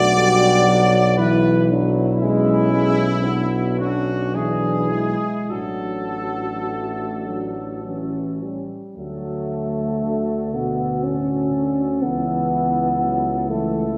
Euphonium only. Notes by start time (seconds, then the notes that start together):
Already playing: F#4
1.19 E4
1.70 D4
2.21 C#4
3.24 B3
3.79 C#4
4.34 D4
4.92 E4
5.51 F#4
8.97 A3
10.54 B3
11.03 C#4
12.02 B3
13.49 A3